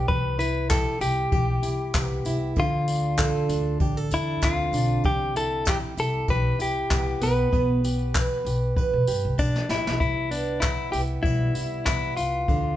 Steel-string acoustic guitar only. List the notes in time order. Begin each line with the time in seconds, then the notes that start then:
Already playing: B3 D4 G4 B4
0.39 E4
0.70 G4
1.01 E4
1.33 G4
1.63 E4
1.95 B3
2.26 E4
2.57 D3
2.88 D4
3.18 A4
3.49 D4
3.81 G4
3.97 A4
4.12 D4
4.42 C4
4.74 D4
5.36 E4
5.67 G4
5.98 E4
6.29 G4
6.59 E4
6.91 B3
7.22 B3
7.52 B3
7.85 G4
8.15 B4
8.46 G4
8.77 B4
9.08 G4
9.38 D4
9.69 G4
10.31 B3
10.62 E4
10.93 B3
11.24 G3
11.55 E4
11.87 B3
12.49 D3